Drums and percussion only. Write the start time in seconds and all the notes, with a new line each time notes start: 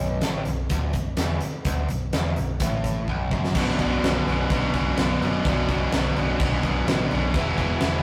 0.21 snare, closed hi-hat
0.45 closed hi-hat
0.70 kick, closed hi-hat
0.93 kick, closed hi-hat
1.17 snare, closed hi-hat
1.41 closed hi-hat
1.65 kick, closed hi-hat
1.89 closed hi-hat
2.13 snare, closed hi-hat
2.36 closed hi-hat
2.60 kick, closed hi-hat
2.84 kick, closed hi-hat
3.08 kick
3.31 kick
3.44 snare
3.55 kick, crash
3.79 kick, crash
4.04 snare, crash
4.28 crash
4.50 kick, crash
4.74 kick, crash
4.97 snare, crash
5.22 crash
5.45 kick, crash
5.69 kick, crash
5.92 snare, crash
6.16 crash
6.40 kick, crash
6.63 kick, crash
6.88 snare, crash
7.11 crash
7.34 kick, crash
7.57 kick, crash
7.80 snare, crash